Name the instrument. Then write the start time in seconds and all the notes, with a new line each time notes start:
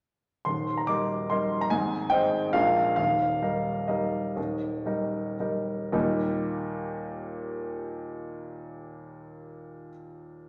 upright piano
0.45 D#1 D#2 C6
0.77 A#5
0.87 G3 D#4 A#4 D6
1.30 G3 D#4 A#4 C6
1.61 A#5
1.70 G#1 G#2 G#5
2.10 G#3 D#4 C5 G5
2.53 A#1 A#2 G#3 D4 A#4 F5
2.96 D#1 D#2 F5
3.42 G3 D#4 A#4
3.88 G3 D#4 A#4 D#5
4.36 D#1 D#2
4.86 G3 D#4 A#4
5.40 G3 D#4 A#4
5.92 D#2 A#2 G3 A#3 D#4 G4